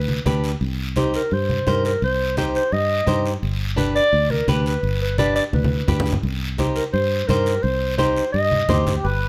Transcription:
Already playing: fingered electric bass D2, clarinet B4
0.08 high conga
0.26 fingered electric bass D2, nylon-string guitar D4 G4 B4, high conga, short guiro
0.44 short guiro
0.61 fingered electric bass C2, long guiro
0.96 nylon-string guitar D#4 G4 C5, clarinet G4, high conga, short guiro
1.14 clarinet A#4, short guiro
1.31 fingered electric bass G2, clarinet C5, long guiro
1.49 high conga
1.67 fingered electric bass G2, nylon-string guitar D#4 G4 C5, clarinet A#4, high conga, short guiro
1.85 clarinet A#4, short guiro
2.02 fingered electric bass C2, clarinet C5, long guiro
2.37 nylon-string guitar D#4 G4 C5, clarinet C5, high conga, short guiro
2.55 clarinet C5, short guiro
2.72 fingered electric bass G2, clarinet D#5, long guiro
3.07 fingered electric bass G2, nylon-string guitar D#4 G4 C5, high conga, short guiro
3.26 short guiro
3.43 fingered electric bass G1, long guiro
3.76 nylon-string guitar D4 G4 B4, clarinet B4, high conga, short guiro
3.95 clarinet D5, short guiro
4.13 fingered electric bass D2, long guiro
4.30 clarinet A#4, high conga
4.48 fingered electric bass D2, nylon-string guitar D4 G4 B4, clarinet B4, high conga, short guiro
4.66 clarinet B4, short guiro
4.83 fingered electric bass G1, long guiro
5.02 clarinet B4
5.18 nylon-string guitar D4 G4 B4, clarinet D5, high conga, short guiro
5.36 clarinet D5, short guiro
5.53 fingered electric bass D2, clarinet B4, high conga, long guiro
5.64 high conga
5.88 fingered electric bass D2, nylon-string guitar D4 G4 B4, low conga, short guiro
6.00 low conga
6.06 short guiro
6.12 low conga
6.23 fingered electric bass C2, long guiro
6.58 nylon-string guitar D#4 G4 C5, clarinet G4, high conga, short guiro
6.76 clarinet A#4, short guiro
6.93 fingered electric bass G2, clarinet C5, long guiro
7.27 fingered electric bass G2, nylon-string guitar D#4 G4 C5, clarinet A#4, high conga, short guiro
7.46 short guiro
7.63 fingered electric bass C2, clarinet C5, long guiro
7.98 nylon-string guitar D#4 G4 C5, clarinet C5, high conga, short guiro
8.17 short guiro
8.32 fingered electric bass G2, clarinet D#5, long guiro
8.51 high conga
8.69 fingered electric bass D2, nylon-string guitar D#4 G4 C5, accordion G4, high conga, low conga, short guiro
8.87 low conga, short guiro
9.04 fingered electric bass G1, accordion B4, long guiro

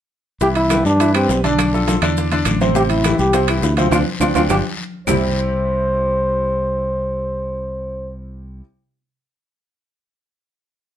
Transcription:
0.41 fingered electric bass C2, grand piano E3 E4 E5, trombone G4, high bongo, long guiro, maracas
0.55 trombone E4, high conga, high timbale, maracas
0.70 grand piano G3 G4 B4, high bongo, high conga, high timbale, short guiro, claves, maracas
0.85 fingered electric bass G2, trombone D4, short guiro, maracas
1.00 grand piano E3 E4 E5, high bongo, high conga, high timbale, long guiro, maracas
1.14 grand piano G3 G4 B4, trombone C4, high conga, high timbale, claves, maracas
1.29 fingered electric bass B1, high bongo, low bongo, low timbale, short guiro, maracas
1.44 grand piano D3 D4 D5, trombone D4, high conga, high timbale, short guiro, maracas
1.59 high bongo, high conga, high timbale, long guiro, claves, maracas
1.73 grand piano F3 F4 A4, high bongo, high conga, maracas
1.87 grand piano F3 F4 A4, high bongo, high conga, high timbale, short guiro, maracas
2.02 fingered electric bass E2, grand piano D3 D4 D5, high bongo, high conga, high timbale, short guiro, claves, maracas
2.17 high bongo, high conga, long guiro, maracas
2.32 grand piano D3 D4 D5, high bongo, high conga, high timbale, maracas
2.45 fingered electric bass A1, high bongo, low bongo, high conga, high timbale, short guiro, claves, maracas
2.61 grand piano C3 C4 C5, high conga, short guiro, maracas
2.75 grand piano C3 C4 C5, trombone G4, high bongo, high conga, long guiro, maracas
2.90 trombone E4, high conga, high timbale, maracas
3.04 grand piano E3 E4 G4, high bongo, high conga, high timbale, short guiro, claves, maracas
3.19 fingered electric bass C2, trombone G4, short guiro, maracas
3.33 grand piano C3 C4 C5, high bongo, high conga, high timbale, long guiro, maracas
3.48 grand piano E3 E4 G4, high conga, high timbale, claves, maracas
3.62 fingered electric bass D2, trombone E4, high bongo, low bongo, short guiro, maracas
3.77 grand piano C3 C4 C5, trombone F4, high conga, high timbale, short guiro, maracas
3.91 fingered electric bass D2, grand piano C4 D4 F4, trombone F4, low bongo, high conga, high timbale, long guiro, claves, maracas
4.20 fingered electric bass D2, grand piano C4 D4 F4, trombone F4, low bongo, high conga, high timbale, long guiro, claves, maracas
4.35 fingered electric bass D2, grand piano C4 D4 F4, trombone F4, low bongo, high conga, high timbale, long guiro, claves, maracas
4.49 fingered electric bass G1, grand piano D4 F4 G4, trombone G4, low bongo, high conga, high timbale, long guiro, claves, maracas
5.07 fingered electric bass C2, grand piano C3 G3 C4 E4 G4, trombone C5, low bongo, low conga, low timbale, long guiro, claves, maracas

